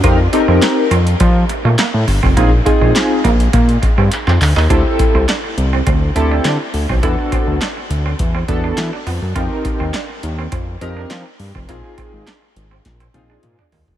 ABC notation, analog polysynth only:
X:1
M:4/4
L:1/16
Q:1/4=103
K:Flyd
V:1 name="Analog polysynth"
[C_EG_B] z [CEGAB]4 z8 z2 | [C_EF_A] z [CEFA]4 z8 z2 | [CEGA]4 z6 [CEGA]2 z4 | [B,D^FA]4 z6 [B,DFA]2 z4 |
[C_EG_B]4 z6 [CEGB]2 z4 | [C_EF_A]4 z6 [CEFA]2 z4 |]